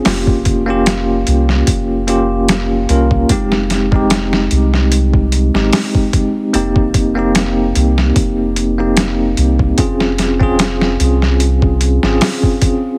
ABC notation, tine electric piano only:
X:1
M:4/4
L:1/16
Q:"Swing 16ths" 1/4=74
K:Fm
V:1 name="Tine electric piano"
[B,DFG]3 [B,DFG]6- [B,DFG] [B,DFG]4 [B,DFB]2 | [A,CEG]3 [A,CEG]8 [A,CEG] z4 | [B,CEG]3 [B,CEG]8 [B,CEG] z4 | [CDFA]3 [CDFA]8 [CDFA] z4 |]